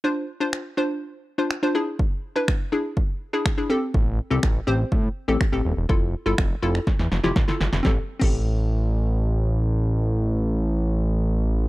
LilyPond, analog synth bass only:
\new Staff \with { instrumentName = "Analog synth bass" } { \clef bass \time 4/4 \key a \minor \tempo 4 = 123 r1 | r1 | a,,8. c,16 a,,8 a,,8 a,8 r16 a,,16 r16 a,,16 dis,,16 e,,16 | f,,8. g,,16 f,,8 f,,8 r16 e,16 f,,16 f,,16 a,,16 r16 g,,16 f,,16 |
a,,16 r8 a,,2.~ a,,16~ | a,,1 | }